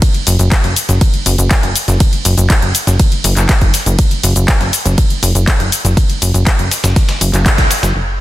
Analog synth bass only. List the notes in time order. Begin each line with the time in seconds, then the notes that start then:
0.27 F#1
0.39 F#1
0.64 F#1
0.89 F#1
1.26 F#1
1.38 F#1
1.63 F#1
1.88 F#1
2.25 F#1
2.38 F#1
2.62 F#1
2.87 F#1
3.24 F#1
3.37 F#1
3.62 F#1
3.86 F#1
4.24 F#1
4.36 F#1
4.61 F#1
4.85 F#1
5.23 F#1
5.35 F#1
5.60 F#1
5.85 F#1
6.22 F#1
6.34 F#1
6.59 F#1
6.84 F#1
7.21 F#1
7.33 F#1
7.58 C#2
7.83 F#1
7.95 F#1